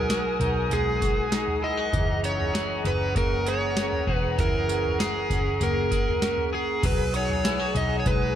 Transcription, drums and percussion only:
0.10 snare, tambourine
0.41 floor tom, tambourine
0.71 floor tom, tambourine
1.02 kick, tambourine
1.32 snare, tambourine
1.48 floor tom
1.93 kick, floor tom, tambourine
2.24 tambourine
2.40 floor tom
2.55 snare, tambourine
2.85 floor tom, tambourine
3.16 kick, floor tom, tambourine
3.46 tambourine
3.77 snare, tambourine
3.92 floor tom
4.08 kick
4.38 kick, floor tom, tambourine
4.69 tambourine
4.85 floor tom
5.00 snare, tambourine
5.30 kick, floor tom, tambourine
5.61 floor tom, tambourine
5.91 kick, tambourine
6.07 floor tom
6.22 snare, tambourine
6.38 floor tom
6.83 kick, floor tom, crash, tambourine
7.14 tambourine
7.30 floor tom
7.45 snare, tambourine
7.76 floor tom, tambourine
8.06 kick, floor tom, tambourine

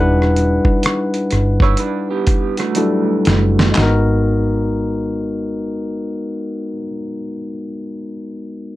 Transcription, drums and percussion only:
0.22 cross-stick
0.36 closed hi-hat
0.65 kick
0.83 cross-stick, closed hi-hat
1.14 closed hi-hat
1.31 cross-stick, closed hi-hat
1.60 kick, cross-stick
1.77 closed hi-hat
2.27 kick, closed hi-hat
2.57 cross-stick, closed hi-hat
2.75 closed hi-hat
3.25 snare, closed hi-hat
3.59 snare
3.75 snare, clap

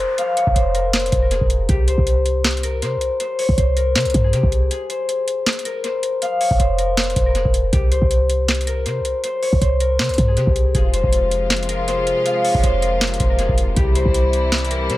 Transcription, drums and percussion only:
0.18 closed hi-hat
0.37 closed hi-hat
0.47 kick
0.56 closed hi-hat
0.75 closed hi-hat
0.93 snare, clap, closed hi-hat
1.00 closed hi-hat
1.06 closed hi-hat
1.12 kick, closed hi-hat
1.31 closed hi-hat
1.41 kick
1.50 closed hi-hat
1.69 kick, closed hi-hat
1.88 closed hi-hat
1.98 kick
2.07 closed hi-hat
2.26 closed hi-hat
2.44 snare, clap, closed hi-hat
2.51 closed hi-hat
2.57 closed hi-hat
2.63 closed hi-hat
2.82 closed hi-hat
3.01 closed hi-hat
3.20 closed hi-hat
3.39 open hi-hat
3.49 kick
3.58 closed hi-hat
3.77 closed hi-hat
3.95 snare, clap, closed hi-hat
4.00 closed hi-hat
4.05 closed hi-hat
4.10 closed hi-hat
4.14 kick, closed hi-hat
4.33 closed hi-hat
4.43 kick
4.52 closed hi-hat
4.71 closed hi-hat
4.90 closed hi-hat
5.09 closed hi-hat
5.28 closed hi-hat
5.46 snare, clap, closed hi-hat
5.53 closed hi-hat
5.59 closed hi-hat
5.65 closed hi-hat
5.84 closed hi-hat
6.03 closed hi-hat
6.22 closed hi-hat
6.41 open hi-hat
6.51 kick
6.60 closed hi-hat
6.79 closed hi-hat
6.97 snare, clap, closed hi-hat
7.04 closed hi-hat
7.10 closed hi-hat
7.16 kick, closed hi-hat
7.35 closed hi-hat
7.45 kick
7.54 closed hi-hat
7.73 kick, closed hi-hat
7.92 closed hi-hat
8.02 kick
8.11 closed hi-hat
8.30 closed hi-hat
8.48 snare, clap, closed hi-hat
8.55 closed hi-hat
8.61 closed hi-hat
8.67 closed hi-hat
8.86 closed hi-hat
9.05 closed hi-hat
9.24 closed hi-hat
9.43 open hi-hat
9.53 kick
9.62 closed hi-hat
9.80 closed hi-hat
9.99 snare, clap, closed hi-hat
10.04 closed hi-hat
10.09 closed hi-hat
10.14 closed hi-hat
10.18 kick, closed hi-hat
10.37 closed hi-hat
10.47 kick
10.56 closed hi-hat
10.75 kick, closed hi-hat
10.94 closed hi-hat
11.04 kick
11.13 closed hi-hat
11.31 closed hi-hat
11.50 snare, clap, closed hi-hat
11.56 closed hi-hat
11.63 closed hi-hat
11.69 closed hi-hat
11.88 closed hi-hat
12.07 closed hi-hat
12.26 closed hi-hat
12.45 open hi-hat
12.55 kick
12.64 closed hi-hat
12.82 closed hi-hat
13.01 snare, clap, closed hi-hat
13.07 closed hi-hat
13.14 closed hi-hat
13.20 kick, closed hi-hat
13.39 closed hi-hat
13.49 kick
13.58 closed hi-hat
13.76 kick, closed hi-hat
13.95 closed hi-hat
14.05 kick
14.14 closed hi-hat
14.33 closed hi-hat
14.52 snare, clap, closed hi-hat
14.58 closed hi-hat
14.65 closed hi-hat
14.71 closed hi-hat
14.90 closed hi-hat

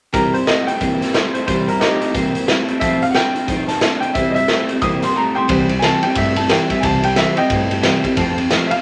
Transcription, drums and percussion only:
0.14 kick, closed hi-hat
0.34 closed hi-hat
0.47 snare, closed hi-hat
0.68 closed hi-hat
0.81 kick, closed hi-hat
1.02 snare, closed hi-hat
1.14 snare, closed hi-hat
1.35 closed hi-hat
1.48 kick, closed hi-hat
1.68 closed hi-hat
1.81 snare, closed hi-hat
2.02 closed hi-hat
2.15 kick, closed hi-hat
2.35 closed hi-hat
2.48 snare, closed hi-hat
2.68 closed hi-hat
2.81 kick, closed hi-hat
3.02 closed hi-hat
3.15 snare, closed hi-hat
3.36 closed hi-hat
3.48 kick, closed hi-hat
3.68 snare, closed hi-hat
3.81 snare, closed hi-hat
4.02 closed hi-hat
4.15 kick, closed hi-hat
4.36 closed hi-hat
4.48 snare, closed hi-hat
4.69 closed hi-hat
4.81 kick, closed hi-hat
5.02 snare, closed hi-hat
5.49 kick, ride
5.69 ride
5.82 snare, ride
6.03 ride
6.15 kick, ride
6.36 ride
6.49 snare, ride
6.70 kick, snare, ride
6.83 kick, ride
7.03 ride
7.16 snare, ride
7.37 ride
7.50 kick, ride
7.71 ride
7.83 snare, ride
8.04 kick, ride
8.17 kick, ride
8.38 ride
8.51 snare, ride
8.71 ride

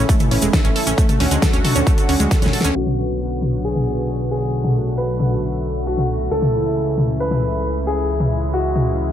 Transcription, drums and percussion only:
0.09 kick, closed hi-hat, cabasa
0.20 closed hi-hat, mid tom, cabasa
0.31 open hi-hat
0.42 closed hi-hat, cabasa
0.53 kick, snare, closed hi-hat, cabasa
0.64 closed hi-hat, cabasa
0.76 open hi-hat
0.87 closed hi-hat, cabasa
0.98 kick, closed hi-hat, cabasa
1.09 closed hi-hat, mid tom, cabasa
1.20 snare, open hi-hat
1.31 closed hi-hat, cabasa
1.42 kick, snare, closed hi-hat, cabasa
1.54 closed hi-hat, cabasa
1.65 open hi-hat, mid tom
1.76 closed hi-hat, cabasa
1.87 kick, closed hi-hat, cabasa
1.98 closed hi-hat, cabasa
2.09 open hi-hat
2.20 closed hi-hat, cabasa
2.31 kick, snare, closed hi-hat, cabasa
2.42 snare, closed hi-hat, mid tom, cabasa
2.53 open hi-hat
2.61 snare, closed hi-hat, cabasa
2.76 crash
2.87 mid tom
3.09 cabasa
3.42 mid tom
3.53 cabasa
3.65 cabasa
3.75 mid tom, cabasa
3.97 cabasa
4.09 cabasa
4.20 cabasa
4.42 cabasa
4.54 cabasa
4.64 mid tom, cabasa
4.87 cabasa
4.97 cabasa
5.09 cabasa
5.20 mid tom
5.32 cabasa
5.42 cabasa
5.54 cabasa
5.76 cabasa
5.87 cabasa
5.98 mid tom, cabasa
6.20 cabasa
6.31 cabasa
6.42 mid tom, cabasa
6.65 cabasa
6.75 cabasa
6.87 cabasa
6.98 mid tom
7.09 cabasa
7.20 cabasa
7.31 mid tom, cabasa
7.54 cabasa
7.64 cabasa
7.75 cabasa
7.98 cabasa
8.09 cabasa
8.20 mid tom, cabasa
8.42 cabasa
8.53 cabasa
8.64 cabasa
8.76 mid tom
8.87 cabasa
8.98 cabasa
9.09 cabasa

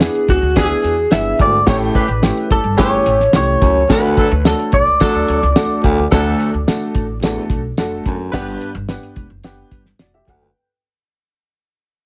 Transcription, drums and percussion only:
0.00 snare, closed hi-hat, tambourine
0.15 closed hi-hat
0.28 kick, closed hi-hat
0.56 kick, snare, closed hi-hat, tambourine
0.84 closed hi-hat
1.11 snare, closed hi-hat, tambourine
1.39 kick, closed hi-hat
1.67 kick, snare, closed hi-hat, tambourine
1.95 kick, closed hi-hat
2.09 closed hi-hat
2.23 snare, closed hi-hat, tambourine
2.38 closed hi-hat
2.51 kick, closed hi-hat
2.78 kick, snare, closed hi-hat, tambourine
3.06 closed hi-hat
3.20 snare
3.33 snare, closed hi-hat, tambourine
3.62 kick, closed hi-hat
3.90 kick, snare, closed hi-hat, tambourine
4.17 kick, closed hi-hat
4.45 snare, closed hi-hat, tambourine
4.59 closed hi-hat
4.72 kick, closed hi-hat
5.00 kick, snare, closed hi-hat, tambourine
5.28 closed hi-hat
5.42 snare
5.56 snare, closed hi-hat, tambourine
5.84 kick, closed hi-hat
6.12 kick, snare, closed hi-hat, tambourine
6.40 closed hi-hat
6.68 snare, closed hi-hat, tambourine
6.95 kick, closed hi-hat
7.23 snare, closed hi-hat, tambourine
7.50 kick, closed hi-hat
7.77 snare, closed hi-hat, tambourine
8.06 kick, closed hi-hat
8.33 kick, snare, closed hi-hat, tambourine
8.61 closed hi-hat
8.75 closed hi-hat
8.89 snare, closed hi-hat, tambourine
9.03 closed hi-hat
9.16 kick, closed hi-hat
9.44 snare, closed hi-hat, tambourine
9.71 kick, closed hi-hat
9.86 snare
9.99 snare, closed hi-hat, tambourine
10.28 kick, closed hi-hat

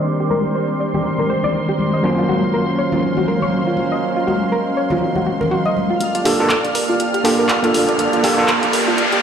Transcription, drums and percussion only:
0.31 high conga
0.94 muted conga, low conga
1.19 high conga, low conga
1.43 muted conga, low conga
1.69 muted conga
1.79 high conga
2.29 high conga
2.92 muted conga, low conga
3.17 muted conga, low conga
3.28 high conga
3.42 low conga
3.77 muted conga
4.28 high conga
4.90 muted conga, low conga
5.15 high conga, low conga
5.41 muted conga, low conga
5.65 muted conga
5.77 high conga
6.01 closed hi-hat
6.15 closed hi-hat
6.25 open hi-hat
6.50 clap, closed hi-hat
6.65 closed hi-hat
6.75 open hi-hat
7.00 closed hi-hat
7.14 closed hi-hat
7.25 open hi-hat
7.49 clap, closed hi-hat
7.64 closed hi-hat
7.74 open hi-hat
7.89 closed hi-hat
7.99 closed hi-hat
8.13 closed hi-hat
8.24 open hi-hat
8.48 clap, closed hi-hat
8.63 closed hi-hat
8.73 open hi-hat
8.98 closed hi-hat
9.12 closed hi-hat

